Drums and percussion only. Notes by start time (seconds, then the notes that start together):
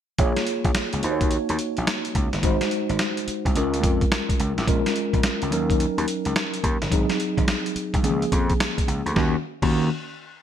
0.18 kick, closed hi-hat
0.36 snare, closed hi-hat
0.47 closed hi-hat
0.65 kick, closed hi-hat
0.75 snare, closed hi-hat
0.93 closed hi-hat
1.03 closed hi-hat
1.21 kick, closed hi-hat
1.31 closed hi-hat
1.49 closed hi-hat
1.59 closed hi-hat
1.77 closed hi-hat
1.87 snare, closed hi-hat
2.05 closed hi-hat
2.15 kick, closed hi-hat
2.33 snare, closed hi-hat
2.43 kick, closed hi-hat
2.61 snare, closed hi-hat
2.71 closed hi-hat
2.89 closed hi-hat
2.99 snare, closed hi-hat
3.17 closed hi-hat
3.28 closed hi-hat
3.45 kick, closed hi-hat
3.56 closed hi-hat
3.74 closed hi-hat
3.84 kick, closed hi-hat
4.01 kick, closed hi-hat
4.12 snare, closed hi-hat
4.29 kick, closed hi-hat
4.40 closed hi-hat
4.58 snare, closed hi-hat
4.67 kick, closed hi-hat
4.86 snare, closed hi-hat
4.96 closed hi-hat
5.13 kick, closed hi-hat
5.23 snare, closed hi-hat
5.42 closed hi-hat
5.52 closed hi-hat
5.70 kick, closed hi-hat
5.80 closed hi-hat
5.98 closed hi-hat
6.08 closed hi-hat
6.25 closed hi-hat
6.36 snare, closed hi-hat
6.54 closed hi-hat
6.64 kick, closed hi-hat
6.82 snare, closed hi-hat
6.92 kick, closed hi-hat
7.09 snare, closed hi-hat
7.20 closed hi-hat
7.37 kick, closed hi-hat
7.48 snare, closed hi-hat
7.66 closed hi-hat
7.76 closed hi-hat
7.94 kick, closed hi-hat
8.04 closed hi-hat
8.22 closed hi-hat
8.32 kick, closed hi-hat
8.50 kick, closed hi-hat
8.60 snare, closed hi-hat
8.78 kick, closed hi-hat
8.88 closed hi-hat
9.06 closed hi-hat
9.16 kick, snare
9.62 kick, crash